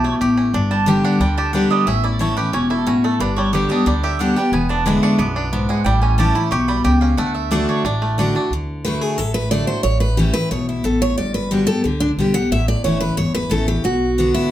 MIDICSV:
0, 0, Header, 1, 6, 480
1, 0, Start_track
1, 0, Key_signature, 2, "major"
1, 0, Tempo, 332594
1, 776, Time_signature, 4, 2, 24, 8
1, 20941, End_track
2, 0, Start_track
2, 0, Title_t, "Mandolin"
2, 0, Program_c, 0, 25
2, 67, Note_on_c, 0, 73, 94
2, 206, Note_off_c, 0, 73, 0
2, 1024, Note_on_c, 0, 81, 99
2, 1251, Note_off_c, 0, 81, 0
2, 1271, Note_on_c, 0, 79, 86
2, 1500, Note_off_c, 0, 79, 0
2, 1508, Note_on_c, 0, 78, 115
2, 1733, Note_off_c, 0, 78, 0
2, 1739, Note_on_c, 0, 79, 89
2, 1974, Note_off_c, 0, 79, 0
2, 1985, Note_on_c, 0, 81, 104
2, 2204, Note_off_c, 0, 81, 0
2, 2210, Note_on_c, 0, 78, 93
2, 2450, Note_off_c, 0, 78, 0
2, 2461, Note_on_c, 0, 75, 104
2, 2690, Note_off_c, 0, 75, 0
2, 2700, Note_on_c, 0, 76, 122
2, 2934, Note_off_c, 0, 76, 0
2, 2939, Note_on_c, 0, 74, 98
2, 3168, Note_off_c, 0, 74, 0
2, 3180, Note_on_c, 0, 73, 88
2, 3410, Note_off_c, 0, 73, 0
2, 3415, Note_on_c, 0, 71, 105
2, 3647, Note_off_c, 0, 71, 0
2, 3654, Note_on_c, 0, 73, 103
2, 3891, Note_off_c, 0, 73, 0
2, 3899, Note_on_c, 0, 69, 94
2, 4128, Note_off_c, 0, 69, 0
2, 4144, Note_on_c, 0, 66, 66
2, 4376, Note_off_c, 0, 66, 0
2, 4390, Note_on_c, 0, 69, 96
2, 4614, Note_off_c, 0, 69, 0
2, 4625, Note_on_c, 0, 71, 84
2, 4851, Note_off_c, 0, 71, 0
2, 4857, Note_on_c, 0, 73, 100
2, 5087, Note_off_c, 0, 73, 0
2, 5095, Note_on_c, 0, 74, 103
2, 5330, Note_off_c, 0, 74, 0
2, 5336, Note_on_c, 0, 75, 123
2, 5567, Note_off_c, 0, 75, 0
2, 5585, Note_on_c, 0, 74, 82
2, 5816, Note_off_c, 0, 74, 0
2, 5824, Note_on_c, 0, 76, 101
2, 6050, Note_off_c, 0, 76, 0
2, 6062, Note_on_c, 0, 78, 103
2, 6293, Note_off_c, 0, 78, 0
2, 6299, Note_on_c, 0, 79, 94
2, 6528, Note_off_c, 0, 79, 0
2, 6535, Note_on_c, 0, 80, 96
2, 6768, Note_off_c, 0, 80, 0
2, 6774, Note_on_c, 0, 81, 110
2, 7005, Note_off_c, 0, 81, 0
2, 7013, Note_on_c, 0, 83, 106
2, 7250, Note_off_c, 0, 83, 0
2, 7257, Note_on_c, 0, 85, 118
2, 7485, Note_off_c, 0, 85, 0
2, 7490, Note_on_c, 0, 86, 96
2, 8164, Note_off_c, 0, 86, 0
2, 8210, Note_on_c, 0, 78, 98
2, 8429, Note_off_c, 0, 78, 0
2, 8435, Note_on_c, 0, 79, 99
2, 8677, Note_off_c, 0, 79, 0
2, 8682, Note_on_c, 0, 80, 102
2, 8918, Note_off_c, 0, 80, 0
2, 8926, Note_on_c, 0, 81, 99
2, 9165, Note_off_c, 0, 81, 0
2, 9172, Note_on_c, 0, 83, 105
2, 9387, Note_off_c, 0, 83, 0
2, 9393, Note_on_c, 0, 85, 99
2, 9637, Note_off_c, 0, 85, 0
2, 9642, Note_on_c, 0, 83, 104
2, 9873, Note_off_c, 0, 83, 0
2, 9879, Note_on_c, 0, 79, 92
2, 10112, Note_off_c, 0, 79, 0
2, 10118, Note_on_c, 0, 77, 88
2, 10348, Note_off_c, 0, 77, 0
2, 10354, Note_on_c, 0, 78, 105
2, 10595, Note_off_c, 0, 78, 0
2, 10601, Note_on_c, 0, 76, 87
2, 10837, Note_off_c, 0, 76, 0
2, 10845, Note_on_c, 0, 74, 86
2, 11084, Note_off_c, 0, 74, 0
2, 11095, Note_on_c, 0, 73, 90
2, 11323, Note_off_c, 0, 73, 0
2, 11334, Note_on_c, 0, 74, 90
2, 12116, Note_off_c, 0, 74, 0
2, 20941, End_track
3, 0, Start_track
3, 0, Title_t, "Steel-string acoustic guitar"
3, 0, Program_c, 1, 25
3, 12766, Note_on_c, 1, 71, 90
3, 13008, Note_off_c, 1, 71, 0
3, 13008, Note_on_c, 1, 68, 86
3, 13245, Note_off_c, 1, 68, 0
3, 13245, Note_on_c, 1, 69, 69
3, 13477, Note_off_c, 1, 69, 0
3, 13483, Note_on_c, 1, 71, 97
3, 13717, Note_off_c, 1, 71, 0
3, 13725, Note_on_c, 1, 74, 99
3, 13954, Note_off_c, 1, 74, 0
3, 13960, Note_on_c, 1, 72, 87
3, 14184, Note_off_c, 1, 72, 0
3, 14190, Note_on_c, 1, 73, 101
3, 14431, Note_off_c, 1, 73, 0
3, 14436, Note_on_c, 1, 71, 84
3, 14674, Note_off_c, 1, 71, 0
3, 14681, Note_on_c, 1, 67, 63
3, 14916, Note_on_c, 1, 71, 99
3, 14922, Note_off_c, 1, 67, 0
3, 15154, Note_off_c, 1, 71, 0
3, 15167, Note_on_c, 1, 73, 78
3, 15405, Note_off_c, 1, 73, 0
3, 15424, Note_on_c, 1, 64, 53
3, 15649, Note_off_c, 1, 64, 0
3, 15658, Note_on_c, 1, 69, 73
3, 15891, Note_off_c, 1, 69, 0
3, 15900, Note_on_c, 1, 73, 93
3, 16123, Note_off_c, 1, 73, 0
3, 16129, Note_on_c, 1, 74, 96
3, 16364, Note_off_c, 1, 74, 0
3, 16370, Note_on_c, 1, 71, 86
3, 16602, Note_off_c, 1, 71, 0
3, 16610, Note_on_c, 1, 66, 67
3, 16832, Note_off_c, 1, 66, 0
3, 16838, Note_on_c, 1, 69, 100
3, 17076, Note_off_c, 1, 69, 0
3, 17085, Note_on_c, 1, 67, 56
3, 17324, Note_on_c, 1, 62, 92
3, 17325, Note_off_c, 1, 67, 0
3, 17469, Note_off_c, 1, 62, 0
3, 17810, Note_on_c, 1, 78, 102
3, 18042, Note_off_c, 1, 78, 0
3, 18067, Note_on_c, 1, 76, 91
3, 18296, Note_off_c, 1, 76, 0
3, 18303, Note_on_c, 1, 74, 93
3, 18527, Note_off_c, 1, 74, 0
3, 18532, Note_on_c, 1, 73, 82
3, 18763, Note_off_c, 1, 73, 0
3, 18769, Note_on_c, 1, 71, 98
3, 19002, Note_off_c, 1, 71, 0
3, 19010, Note_on_c, 1, 73, 101
3, 19248, Note_off_c, 1, 73, 0
3, 19260, Note_on_c, 1, 71, 101
3, 19488, Note_off_c, 1, 71, 0
3, 19495, Note_on_c, 1, 69, 90
3, 19730, Note_off_c, 1, 69, 0
3, 19742, Note_on_c, 1, 67, 88
3, 19969, Note_off_c, 1, 67, 0
3, 19983, Note_on_c, 1, 66, 80
3, 20652, Note_off_c, 1, 66, 0
3, 20703, Note_on_c, 1, 64, 98
3, 20929, Note_off_c, 1, 64, 0
3, 20941, End_track
4, 0, Start_track
4, 0, Title_t, "Five-string banjo"
4, 0, Program_c, 2, 105
4, 0, Note_on_c, 2, 64, 57
4, 0, Note_on_c, 2, 67, 72
4, 61, Note_on_c, 2, 57, 61
4, 248, Note_off_c, 2, 64, 0
4, 284, Note_off_c, 2, 67, 0
4, 301, Note_on_c, 2, 67, 62
4, 540, Note_on_c, 2, 61, 62
4, 729, Note_off_c, 2, 57, 0
4, 776, Note_off_c, 2, 61, 0
4, 779, Note_off_c, 2, 67, 0
4, 783, Note_on_c, 2, 62, 69
4, 1022, Note_on_c, 2, 55, 57
4, 1266, Note_on_c, 2, 67, 60
4, 1454, Note_off_c, 2, 62, 0
4, 1513, Note_on_c, 2, 62, 62
4, 1690, Note_off_c, 2, 55, 0
4, 1743, Note_on_c, 2, 55, 63
4, 1936, Note_off_c, 2, 67, 0
4, 1993, Note_on_c, 2, 67, 61
4, 2175, Note_off_c, 2, 62, 0
4, 2241, Note_on_c, 2, 62, 64
4, 2414, Note_off_c, 2, 55, 0
4, 2476, Note_on_c, 2, 55, 61
4, 2656, Note_off_c, 2, 67, 0
4, 2704, Note_off_c, 2, 55, 0
4, 2709, Note_off_c, 2, 62, 0
4, 2712, Note_on_c, 2, 61, 70
4, 2949, Note_on_c, 2, 64, 65
4, 3185, Note_on_c, 2, 57, 55
4, 3379, Note_off_c, 2, 61, 0
4, 3427, Note_on_c, 2, 67, 62
4, 3613, Note_off_c, 2, 64, 0
4, 3664, Note_on_c, 2, 61, 63
4, 3855, Note_off_c, 2, 57, 0
4, 3906, Note_on_c, 2, 64, 61
4, 4092, Note_off_c, 2, 67, 0
4, 4127, Note_off_c, 2, 61, 0
4, 4144, Note_on_c, 2, 61, 65
4, 4393, Note_on_c, 2, 57, 59
4, 4571, Note_off_c, 2, 64, 0
4, 4620, Note_off_c, 2, 61, 0
4, 4623, Note_off_c, 2, 57, 0
4, 4632, Note_on_c, 2, 62, 63
4, 4877, Note_on_c, 2, 55, 65
4, 5121, Note_on_c, 2, 67, 54
4, 5356, Note_off_c, 2, 62, 0
4, 5361, Note_on_c, 2, 62, 62
4, 5537, Note_off_c, 2, 55, 0
4, 5585, Note_on_c, 2, 55, 71
4, 5783, Note_off_c, 2, 67, 0
4, 5827, Note_on_c, 2, 67, 60
4, 6019, Note_off_c, 2, 62, 0
4, 6070, Note_on_c, 2, 62, 58
4, 6255, Note_off_c, 2, 55, 0
4, 6314, Note_on_c, 2, 55, 60
4, 6492, Note_off_c, 2, 67, 0
4, 6542, Note_off_c, 2, 55, 0
4, 6542, Note_off_c, 2, 62, 0
4, 6547, Note_on_c, 2, 59, 65
4, 6786, Note_on_c, 2, 62, 60
4, 7027, Note_on_c, 2, 56, 64
4, 7215, Note_off_c, 2, 59, 0
4, 7245, Note_off_c, 2, 62, 0
4, 7262, Note_on_c, 2, 62, 61
4, 7484, Note_on_c, 2, 59, 73
4, 7695, Note_off_c, 2, 56, 0
4, 7719, Note_off_c, 2, 62, 0
4, 7736, Note_on_c, 2, 62, 59
4, 7957, Note_off_c, 2, 59, 0
4, 7975, Note_on_c, 2, 59, 60
4, 8224, Note_on_c, 2, 56, 64
4, 8405, Note_off_c, 2, 62, 0
4, 8450, Note_off_c, 2, 56, 0
4, 8454, Note_off_c, 2, 59, 0
4, 8456, Note_on_c, 2, 55, 80
4, 8699, Note_on_c, 2, 61, 61
4, 8943, Note_on_c, 2, 67, 59
4, 9129, Note_off_c, 2, 55, 0
4, 9166, Note_on_c, 2, 64, 67
4, 9366, Note_off_c, 2, 61, 0
4, 9389, Note_off_c, 2, 67, 0
4, 9406, Note_on_c, 2, 67, 68
4, 9649, Note_on_c, 2, 55, 58
4, 9839, Note_off_c, 2, 64, 0
4, 9860, Note_off_c, 2, 67, 0
4, 9878, Note_on_c, 2, 67, 63
4, 10133, Note_on_c, 2, 61, 63
4, 10321, Note_off_c, 2, 55, 0
4, 10364, Note_off_c, 2, 67, 0
4, 10367, Note_on_c, 2, 57, 86
4, 10370, Note_off_c, 2, 61, 0
4, 10844, Note_on_c, 2, 62, 59
4, 11044, Note_off_c, 2, 57, 0
4, 11077, Note_off_c, 2, 62, 0
4, 11094, Note_on_c, 2, 62, 61
4, 11308, Note_off_c, 2, 62, 0
4, 11325, Note_on_c, 2, 62, 69
4, 11573, Note_on_c, 2, 57, 62
4, 11798, Note_off_c, 2, 62, 0
4, 11816, Note_on_c, 2, 62, 68
4, 12046, Note_off_c, 2, 62, 0
4, 12064, Note_on_c, 2, 62, 63
4, 12242, Note_off_c, 2, 57, 0
4, 12295, Note_off_c, 2, 62, 0
4, 20941, End_track
5, 0, Start_track
5, 0, Title_t, "Steel-string acoustic guitar"
5, 0, Program_c, 3, 25
5, 0, Note_on_c, 3, 47, 97
5, 275, Note_off_c, 3, 47, 0
5, 309, Note_on_c, 3, 45, 93
5, 759, Note_off_c, 3, 45, 0
5, 782, Note_on_c, 3, 43, 87
5, 1245, Note_on_c, 3, 50, 104
5, 1259, Note_on_c, 3, 55, 92
5, 1268, Note_on_c, 3, 59, 98
5, 1277, Note_on_c, 3, 67, 106
5, 1692, Note_off_c, 3, 43, 0
5, 1707, Note_off_c, 3, 50, 0
5, 1714, Note_off_c, 3, 55, 0
5, 1719, Note_off_c, 3, 59, 0
5, 1723, Note_off_c, 3, 67, 0
5, 1743, Note_on_c, 3, 50, 93
5, 2192, Note_off_c, 3, 50, 0
5, 2209, Note_on_c, 3, 50, 90
5, 2222, Note_on_c, 3, 55, 100
5, 2233, Note_on_c, 3, 59, 92
5, 2245, Note_on_c, 3, 67, 99
5, 2669, Note_off_c, 3, 50, 0
5, 2675, Note_off_c, 3, 55, 0
5, 2681, Note_off_c, 3, 59, 0
5, 2687, Note_off_c, 3, 67, 0
5, 2697, Note_on_c, 3, 45, 83
5, 3164, Note_on_c, 3, 52, 91
5, 3178, Note_on_c, 3, 57, 85
5, 3184, Note_on_c, 3, 61, 99
5, 3193, Note_on_c, 3, 64, 106
5, 3404, Note_off_c, 3, 52, 0
5, 3405, Note_off_c, 3, 64, 0
5, 3411, Note_off_c, 3, 57, 0
5, 3414, Note_off_c, 3, 61, 0
5, 3422, Note_on_c, 3, 64, 65
5, 3448, Note_on_c, 3, 61, 56
5, 3609, Note_off_c, 3, 45, 0
5, 3648, Note_off_c, 3, 64, 0
5, 3655, Note_on_c, 3, 47, 91
5, 3661, Note_off_c, 3, 61, 0
5, 4112, Note_off_c, 3, 47, 0
5, 4134, Note_on_c, 3, 45, 95
5, 4591, Note_off_c, 3, 45, 0
5, 4623, Note_on_c, 3, 43, 97
5, 5091, Note_on_c, 3, 50, 89
5, 5096, Note_on_c, 3, 55, 93
5, 5113, Note_on_c, 3, 59, 100
5, 5119, Note_on_c, 3, 67, 97
5, 5308, Note_off_c, 3, 67, 0
5, 5325, Note_on_c, 3, 67, 64
5, 5327, Note_off_c, 3, 50, 0
5, 5330, Note_off_c, 3, 55, 0
5, 5338, Note_off_c, 3, 59, 0
5, 5355, Note_on_c, 3, 59, 53
5, 5532, Note_off_c, 3, 43, 0
5, 5559, Note_off_c, 3, 67, 0
5, 5573, Note_on_c, 3, 50, 97
5, 5574, Note_off_c, 3, 59, 0
5, 6032, Note_off_c, 3, 50, 0
5, 6049, Note_on_c, 3, 50, 87
5, 6069, Note_on_c, 3, 55, 100
5, 6073, Note_on_c, 3, 59, 109
5, 6078, Note_on_c, 3, 67, 92
5, 6278, Note_off_c, 3, 67, 0
5, 6286, Note_off_c, 3, 50, 0
5, 6295, Note_on_c, 3, 67, 72
5, 6296, Note_off_c, 3, 55, 0
5, 6298, Note_off_c, 3, 59, 0
5, 6326, Note_on_c, 3, 59, 60
5, 6523, Note_off_c, 3, 67, 0
5, 6535, Note_on_c, 3, 40, 77
5, 6539, Note_off_c, 3, 59, 0
5, 7009, Note_on_c, 3, 50, 105
5, 7018, Note_on_c, 3, 56, 102
5, 7035, Note_on_c, 3, 59, 93
5, 7035, Note_on_c, 3, 64, 116
5, 7447, Note_off_c, 3, 40, 0
5, 7467, Note_off_c, 3, 50, 0
5, 7472, Note_off_c, 3, 56, 0
5, 7480, Note_off_c, 3, 59, 0
5, 7481, Note_off_c, 3, 64, 0
5, 7495, Note_on_c, 3, 42, 91
5, 7951, Note_off_c, 3, 42, 0
5, 7978, Note_on_c, 3, 44, 99
5, 8431, Note_off_c, 3, 44, 0
5, 8456, Note_on_c, 3, 45, 84
5, 8917, Note_on_c, 3, 52, 107
5, 8924, Note_on_c, 3, 55, 88
5, 8937, Note_on_c, 3, 61, 104
5, 8945, Note_on_c, 3, 64, 109
5, 9145, Note_off_c, 3, 64, 0
5, 9158, Note_off_c, 3, 52, 0
5, 9162, Note_off_c, 3, 55, 0
5, 9163, Note_on_c, 3, 64, 64
5, 9168, Note_off_c, 3, 61, 0
5, 9189, Note_on_c, 3, 61, 57
5, 9366, Note_off_c, 3, 45, 0
5, 9396, Note_off_c, 3, 64, 0
5, 9409, Note_off_c, 3, 61, 0
5, 9410, Note_on_c, 3, 47, 96
5, 9867, Note_off_c, 3, 47, 0
5, 9880, Note_on_c, 3, 49, 96
5, 10342, Note_off_c, 3, 49, 0
5, 10363, Note_on_c, 3, 50, 87
5, 10817, Note_off_c, 3, 50, 0
5, 10834, Note_on_c, 3, 50, 87
5, 10844, Note_on_c, 3, 57, 103
5, 10852, Note_on_c, 3, 62, 116
5, 10862, Note_on_c, 3, 66, 114
5, 11298, Note_off_c, 3, 50, 0
5, 11303, Note_off_c, 3, 57, 0
5, 11307, Note_off_c, 3, 62, 0
5, 11312, Note_off_c, 3, 66, 0
5, 11338, Note_on_c, 3, 45, 92
5, 11804, Note_on_c, 3, 50, 93
5, 11818, Note_on_c, 3, 57, 107
5, 11831, Note_on_c, 3, 62, 112
5, 11841, Note_on_c, 3, 66, 120
5, 12034, Note_off_c, 3, 66, 0
5, 12041, Note_off_c, 3, 50, 0
5, 12048, Note_off_c, 3, 57, 0
5, 12051, Note_on_c, 3, 66, 63
5, 12054, Note_off_c, 3, 62, 0
5, 12079, Note_on_c, 3, 62, 47
5, 12247, Note_off_c, 3, 45, 0
5, 12279, Note_off_c, 3, 66, 0
5, 12293, Note_off_c, 3, 62, 0
5, 12310, Note_on_c, 3, 50, 91
5, 12756, Note_off_c, 3, 50, 0
5, 12774, Note_on_c, 3, 50, 94
5, 12783, Note_on_c, 3, 57, 101
5, 12792, Note_on_c, 3, 62, 91
5, 12807, Note_on_c, 3, 66, 93
5, 13228, Note_off_c, 3, 50, 0
5, 13233, Note_off_c, 3, 57, 0
5, 13237, Note_off_c, 3, 62, 0
5, 13245, Note_off_c, 3, 66, 0
5, 13261, Note_on_c, 3, 45, 93
5, 13725, Note_on_c, 3, 50, 84
5, 13735, Note_on_c, 3, 57, 89
5, 13743, Note_on_c, 3, 62, 85
5, 13757, Note_on_c, 3, 66, 102
5, 13941, Note_off_c, 3, 66, 0
5, 13958, Note_on_c, 3, 66, 63
5, 13961, Note_off_c, 3, 50, 0
5, 13966, Note_off_c, 3, 57, 0
5, 13970, Note_off_c, 3, 62, 0
5, 13987, Note_on_c, 3, 62, 52
5, 14169, Note_off_c, 3, 45, 0
5, 14193, Note_off_c, 3, 66, 0
5, 14205, Note_on_c, 3, 45, 81
5, 14207, Note_off_c, 3, 62, 0
5, 14680, Note_on_c, 3, 52, 96
5, 14690, Note_on_c, 3, 57, 84
5, 14702, Note_on_c, 3, 61, 108
5, 14708, Note_on_c, 3, 64, 109
5, 14904, Note_off_c, 3, 64, 0
5, 14919, Note_off_c, 3, 52, 0
5, 14921, Note_on_c, 3, 64, 56
5, 14924, Note_off_c, 3, 57, 0
5, 14930, Note_off_c, 3, 61, 0
5, 14948, Note_on_c, 3, 61, 50
5, 15121, Note_off_c, 3, 45, 0
5, 15155, Note_off_c, 3, 64, 0
5, 15168, Note_off_c, 3, 61, 0
5, 15174, Note_on_c, 3, 47, 89
5, 15629, Note_off_c, 3, 47, 0
5, 15644, Note_on_c, 3, 45, 96
5, 16104, Note_off_c, 3, 45, 0
5, 16138, Note_on_c, 3, 43, 77
5, 16612, Note_on_c, 3, 50, 94
5, 16624, Note_on_c, 3, 55, 100
5, 16631, Note_on_c, 3, 59, 89
5, 16642, Note_on_c, 3, 67, 94
5, 16837, Note_off_c, 3, 67, 0
5, 16846, Note_off_c, 3, 50, 0
5, 16852, Note_off_c, 3, 55, 0
5, 16855, Note_off_c, 3, 59, 0
5, 16855, Note_on_c, 3, 67, 56
5, 16885, Note_on_c, 3, 59, 51
5, 17048, Note_off_c, 3, 43, 0
5, 17082, Note_off_c, 3, 67, 0
5, 17097, Note_off_c, 3, 59, 0
5, 17107, Note_on_c, 3, 50, 85
5, 17569, Note_off_c, 3, 50, 0
5, 17587, Note_on_c, 3, 50, 95
5, 17599, Note_on_c, 3, 55, 81
5, 17610, Note_on_c, 3, 59, 92
5, 17614, Note_on_c, 3, 67, 103
5, 17807, Note_off_c, 3, 67, 0
5, 17813, Note_off_c, 3, 50, 0
5, 17819, Note_off_c, 3, 55, 0
5, 17824, Note_on_c, 3, 67, 59
5, 17825, Note_off_c, 3, 59, 0
5, 17860, Note_on_c, 3, 59, 48
5, 18047, Note_off_c, 3, 67, 0
5, 18065, Note_off_c, 3, 59, 0
5, 18071, Note_on_c, 3, 45, 89
5, 18537, Note_on_c, 3, 52, 86
5, 18544, Note_on_c, 3, 57, 94
5, 18554, Note_on_c, 3, 61, 93
5, 18563, Note_on_c, 3, 64, 101
5, 18765, Note_off_c, 3, 64, 0
5, 18769, Note_off_c, 3, 52, 0
5, 18772, Note_off_c, 3, 57, 0
5, 18777, Note_off_c, 3, 61, 0
5, 18782, Note_on_c, 3, 64, 63
5, 18817, Note_on_c, 3, 61, 48
5, 18975, Note_off_c, 3, 45, 0
5, 19006, Note_off_c, 3, 64, 0
5, 19011, Note_on_c, 3, 40, 81
5, 19024, Note_off_c, 3, 61, 0
5, 19478, Note_on_c, 3, 52, 88
5, 19493, Note_on_c, 3, 57, 86
5, 19506, Note_on_c, 3, 61, 87
5, 19508, Note_on_c, 3, 64, 97
5, 19705, Note_off_c, 3, 64, 0
5, 19719, Note_off_c, 3, 52, 0
5, 19722, Note_on_c, 3, 64, 60
5, 19727, Note_off_c, 3, 57, 0
5, 19733, Note_off_c, 3, 61, 0
5, 19758, Note_on_c, 3, 61, 45
5, 19925, Note_off_c, 3, 40, 0
5, 19957, Note_off_c, 3, 64, 0
5, 19973, Note_on_c, 3, 47, 86
5, 19974, Note_off_c, 3, 61, 0
5, 20465, Note_on_c, 3, 50, 95
5, 20469, Note_on_c, 3, 59, 98
5, 20481, Note_on_c, 3, 62, 89
5, 20491, Note_on_c, 3, 66, 101
5, 20886, Note_off_c, 3, 47, 0
5, 20915, Note_off_c, 3, 50, 0
5, 20918, Note_off_c, 3, 59, 0
5, 20924, Note_off_c, 3, 62, 0
5, 20929, Note_off_c, 3, 66, 0
5, 20941, End_track
6, 0, Start_track
6, 0, Title_t, "Upright bass"
6, 0, Program_c, 4, 32
6, 0, Note_on_c, 4, 35, 96
6, 219, Note_off_c, 4, 35, 0
6, 302, Note_on_c, 4, 33, 85
6, 707, Note_off_c, 4, 33, 0
6, 772, Note_on_c, 4, 31, 104
6, 1426, Note_off_c, 4, 31, 0
6, 1732, Note_on_c, 4, 38, 96
6, 2386, Note_off_c, 4, 38, 0
6, 2693, Note_on_c, 4, 33, 93
6, 3347, Note_off_c, 4, 33, 0
6, 3653, Note_on_c, 4, 28, 85
6, 4307, Note_off_c, 4, 28, 0
6, 4613, Note_on_c, 4, 31, 103
6, 5266, Note_off_c, 4, 31, 0
6, 5573, Note_on_c, 4, 38, 89
6, 6227, Note_off_c, 4, 38, 0
6, 6516, Note_on_c, 4, 28, 101
6, 7175, Note_off_c, 4, 28, 0
6, 7487, Note_on_c, 4, 35, 92
6, 8142, Note_off_c, 4, 35, 0
6, 8441, Note_on_c, 4, 33, 104
6, 9098, Note_off_c, 4, 33, 0
6, 9405, Note_on_c, 4, 35, 93
6, 9815, Note_off_c, 4, 35, 0
6, 9888, Note_on_c, 4, 37, 86
6, 10297, Note_off_c, 4, 37, 0
6, 10361, Note_on_c, 4, 38, 107
6, 11017, Note_off_c, 4, 38, 0
6, 11317, Note_on_c, 4, 33, 92
6, 11974, Note_off_c, 4, 33, 0
6, 12277, Note_on_c, 4, 38, 93
6, 12934, Note_off_c, 4, 38, 0
6, 13244, Note_on_c, 4, 33, 79
6, 13899, Note_off_c, 4, 33, 0
6, 14204, Note_on_c, 4, 33, 104
6, 14859, Note_off_c, 4, 33, 0
6, 15167, Note_on_c, 4, 35, 88
6, 15577, Note_off_c, 4, 35, 0
6, 15650, Note_on_c, 4, 33, 77
6, 16059, Note_off_c, 4, 33, 0
6, 16133, Note_on_c, 4, 31, 96
6, 16786, Note_off_c, 4, 31, 0
6, 17091, Note_on_c, 4, 37, 83
6, 17500, Note_off_c, 4, 37, 0
6, 17560, Note_on_c, 4, 35, 85
6, 17973, Note_off_c, 4, 35, 0
6, 18047, Note_on_c, 4, 33, 100
6, 18376, Note_off_c, 4, 33, 0
6, 18527, Note_on_c, 4, 30, 81
6, 18938, Note_off_c, 4, 30, 0
6, 19014, Note_on_c, 4, 31, 87
6, 19421, Note_off_c, 4, 31, 0
6, 19495, Note_on_c, 4, 33, 76
6, 19902, Note_off_c, 4, 33, 0
6, 19975, Note_on_c, 4, 35, 103
6, 20628, Note_off_c, 4, 35, 0
6, 20941, End_track
0, 0, End_of_file